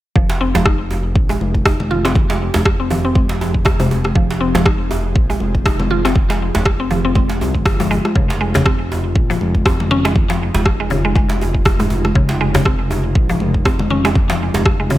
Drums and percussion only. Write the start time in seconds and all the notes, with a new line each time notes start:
0.16 kick
0.30 djembe slap
0.55 djembe slap, high conga, djembe bass
0.66 kick, cross-stick
0.91 djembe tone
1.15 kick
1.29 djembe tone
1.41 high conga
1.54 kick, high conga
1.65 kick, cross-stick, djembe tone
1.80 high conga, low conga
1.91 low conga
2.05 cross-stick, djembe slap
2.15 kick, low conga
2.30 djembe slap
2.54 djembe slap, high conga, djembe bass
2.65 kick, cross-stick
2.90 djembe tone, low conga
3.15 kick, high conga
3.29 djembe slap
3.41 djembe tone
3.54 kick
3.65 kick, cross-stick, djembe tone
3.80 high conga, djembe tone
3.91 djembe tone
4.04 cross-stick, high conga
4.15 kick
4.30 djembe slap
4.55 djembe slap, high conga, djembe bass
4.66 kick, cross-stick
4.91 djembe tone
5.16 kick
5.30 djembe tone
5.40 high conga
5.55 kick, high conga
5.66 kick, cross-stick, djembe tone
5.80 high conga, low conga
5.90 low conga
6.05 cross-stick, djembe slap
6.15 kick, low conga
6.30 djembe slap
6.55 djembe slap, high conga, djembe bass
6.65 kick, cross-stick
6.91 djembe tone, low conga
7.15 kick, high conga, low conga
7.29 djembe slap
7.41 djembe tone
7.55 kick, high conga
7.65 kick, cross-stick, djembe tone
7.80 high conga, djembe tone
7.91 djembe tone
8.05 cross-stick, high conga
8.15 kick
8.30 djembe slap
8.54 djembe slap, high conga, djembe bass
8.65 kick, cross-stick
8.92 djembe tone
9.15 kick
9.31 djembe tone
9.41 high conga
9.55 kick, high conga
9.66 kick, cross-stick, djembe tone
9.80 high conga, low conga
9.91 low conga
10.05 cross-stick, djembe slap
10.15 kick, low conga
10.30 djembe slap
10.54 djembe slap, high conga, djembe bass
10.65 kick, cross-stick
10.90 djembe tone, low conga
11.15 kick, high conga
11.30 djembe slap
11.41 djembe tone
11.55 kick
11.65 kick, cross-stick, djembe tone
11.80 djembe tone, high conga
11.90 djembe tone
12.05 cross-stick, high conga
12.15 kick
12.29 djembe slap
12.54 djembe slap, high conga, djembe bass
12.65 kick, cross-stick
12.91 djembe tone
13.15 kick
13.29 djembe tone
13.40 high conga
13.54 kick, high conga
13.65 kick, cross-stick, djembe tone
13.79 high conga, low conga
13.90 low conga
14.05 cross-stick, djembe slap
14.15 kick, low conga
14.30 djembe slap
14.54 djembe slap, high conga, djembe bass
14.65 kick, cross-stick
14.90 djembe tone, low conga